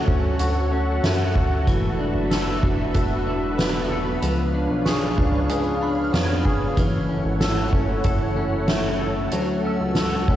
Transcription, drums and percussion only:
0.08 kick
0.39 closed hi-hat
1.04 snare, closed hi-hat
1.35 kick
1.67 kick, closed hi-hat
2.31 snare, closed hi-hat
2.63 kick
2.94 kick, closed hi-hat
3.59 snare, closed hi-hat
4.22 closed hi-hat
4.86 snare, closed hi-hat
5.18 kick
5.49 closed hi-hat
6.14 snare, closed hi-hat
6.45 kick
6.77 kick, closed hi-hat
7.41 snare, closed hi-hat
7.73 kick
8.04 kick, closed hi-hat
8.68 snare, closed hi-hat
9.32 closed hi-hat
9.95 snare, closed hi-hat
10.28 kick

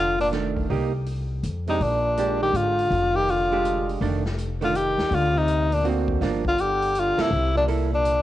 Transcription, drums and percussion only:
0.20 open hi-hat
0.32 snare, closed hi-hat
0.57 kick, open hi-hat
0.70 kick, open hi-hat
1.06 open hi-hat
1.43 closed hi-hat
1.67 open hi-hat
1.80 kick, open hi-hat
2.17 closed hi-hat
2.54 closed hi-hat
2.79 open hi-hat
2.91 kick, open hi-hat
3.28 open hi-hat
3.65 closed hi-hat
3.89 open hi-hat
4.01 kick, open hi-hat
4.25 snare
4.38 closed hi-hat
4.62 open hi-hat
4.75 closed hi-hat
4.99 snare, open hi-hat
5.11 kick, open hi-hat
5.48 closed hi-hat
5.72 open hi-hat
5.85 open hi-hat
6.08 kick
6.21 kick, snare, open hi-hat
6.45 kick
6.58 closed hi-hat
6.82 open hi-hat
6.95 closed hi-hat
7.18 snare, ride
7.68 open hi-hat
8.05 closed hi-hat

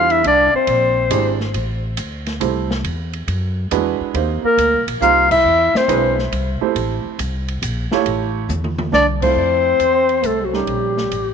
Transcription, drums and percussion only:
0.10 ride
0.24 ride
0.67 ride
1.10 hi-hat pedal, ride
1.40 snare
1.54 ride
1.97 hi-hat pedal, ride
2.26 snare, ride
2.41 hi-hat pedal, ride
2.71 snare
2.84 ride
3.13 ride
3.28 ride
3.71 hi-hat pedal, ride
4.15 ride
4.58 hi-hat pedal, ride
4.88 ride
5.02 hi-hat pedal
5.31 kick, crash
5.75 snare
5.89 hi-hat pedal, ride
6.19 snare
6.32 ride
6.76 ride
7.19 hi-hat pedal, ride
7.48 ride
7.62 hi-hat pedal, ride
7.92 snare
8.06 ride
8.49 hi-hat pedal, mid tom
8.64 mid tom
8.78 mid tom
8.93 snare
9.22 kick, crash
9.80 hi-hat pedal, ride
10.09 ride
10.23 hi-hat pedal, ride
10.53 snare
10.67 ride
10.97 snare
11.11 hi-hat pedal, ride

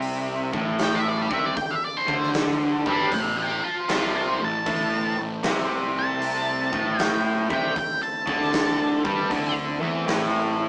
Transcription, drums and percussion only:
0.02 open hi-hat
0.53 kick
0.78 snare, open hi-hat
1.31 kick
1.57 kick, open hi-hat
2.08 kick
2.23 snare
2.34 snare, open hi-hat
2.86 kick
3.12 kick, open hi-hat
3.89 snare, open hi-hat
4.66 kick, open hi-hat
5.43 snare, open hi-hat
6.22 open hi-hat
6.73 kick
6.99 snare, open hi-hat
7.50 kick
7.76 kick, open hi-hat
8.27 kick
8.41 snare
8.53 snare, open hi-hat
9.05 kick
9.31 kick, open hi-hat
10.08 snare, open hi-hat

